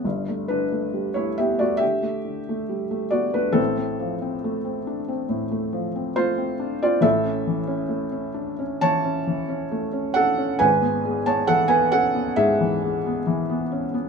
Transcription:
felt piano
0.04 G1 G2
0.28 A3
0.48 D3 D4 B4
0.72 A3
0.94 G3
1.14 A3 E4 C#5
1.38 B3 G4 E5
1.59 A3 F#4 D5
1.77 D3 G4 E5
2.02 A3
2.25 D3
2.49 A3
2.69 G3
2.91 A3
3.11 B3 F#4 D5
3.33 A3 D4 B4
3.52 A1 A2 C4 A4
3.78 C4
3.99 F3
4.22 C4
4.44 A3
4.65 C4
4.87 D4
5.08 C4
5.29 A2
5.51 A3
5.73 F3
5.95 C4
6.16 A3 F4 C5
6.38 C4
6.59 D4
6.83 C4 F4 D5
7.01 A1 A2 A4 E5
7.25 C#4
7.47 E3
7.67 C#4
7.89 A3
8.12 C#4
8.34 D4
8.59 C#4
8.81 E3 C#5 A5
9.04 C#4
9.27 E3
9.49 C#4
9.72 A3
9.92 C#4
10.14 D4 A4 F#5
10.37 C#4
10.59 G#1 G#2 B4 G#5
10.81 B3
11.05 G#3
11.26 B3 C#5 A5
11.47 E3 A4 F#5
11.68 B3 B4 G#5
11.92 C#4 A4 F#5
12.15 B3
12.36 G#2 G#4 E5
12.60 E3
12.82 G#3
13.06 B3
13.27 E3
13.50 B3
13.72 C#4
13.94 B3

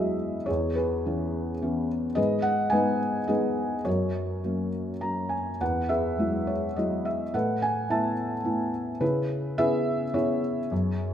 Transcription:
felt piano
Already playing: E2 F#3 G#3 E4 F#4 G#4 B4 D#5 E5
0.46 E2 G#4 C#5
0.75 G#4 B4
1.06 E3 B3 C#4
1.62 E3 B3 C#4
2.15 G#2 G#4 B4 D#5
2.42 F#5
2.70 G#3 B3 D#4 B4 D#5 G#5
3.28 G#3 B3 D#4 G#4 B4 D#5
3.85 F#2 F#4 A#4 C#5
4.44 F#3 A#3 C#4
5.01 F#3 A#3 C#4 A#5
5.29 G#5
5.61 E2 B4 F#5
5.89 G#4 B4 E5
6.18 F#3 G#3 E4
6.47 C#5
6.76 F#3 G#3 E4 D#5
7.05 E5
7.34 A2 A4 B4 F#5
7.62 G#5
7.89 A3 B3 E4 E5 A5
8.44 A3 B3 E4
9.01 C#3 E4 G#4 B4
9.58 B3 C#4 E4 G#4 B4 E5
10.14 B3 C#4 E4 G#4 C#5
10.72 F#2

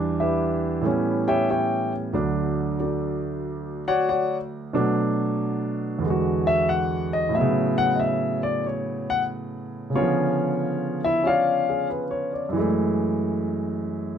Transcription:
grand piano
Already playing: E2 E3 G3 D4
0.20 E4 G4 B4 E5
0.81 A2 E3 G3 A3
0.85 B3 C#4
1.28 G4 C#5 E5 G5
1.50 G4 C#5 E5 G5
2.13 D2 D3 F#3 D4
2.80 D4 F#4 A4 D5
3.88 F#4 C#5 D5 F#5
4.09 F#4 C#5 D5 F#5
4.73 B2 F#3 A3 D4
5.99 E2 D3
6.06 G#3
6.10 F#4
6.47 E5
6.69 F#5
7.13 D#5
7.29 A2
7.33 F#3 B3 E5
7.40 C#3
7.78 F#5
7.95 D#5
8.00 E5
8.43 D5
8.67 C#5
9.10 F#5
9.90 C#3
9.94 D3 B3 C#4 F4 G#4 C#5
10.01 F3
11.04 E4 E5
11.23 C#4 F4 C#5 D5 F5
11.69 G#4
11.90 B4
12.11 C#5
12.33 D5
12.49 F#2 E3
12.57 G#3 A3

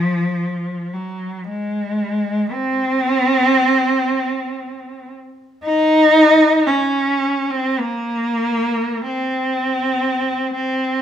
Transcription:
cello
Already playing: F3
0.93 F#3
1.49 G#3
2.51 C4
5.63 D#4
6.66 C#4
7.50 C4
7.79 A#3
9.06 C4
10.55 C4

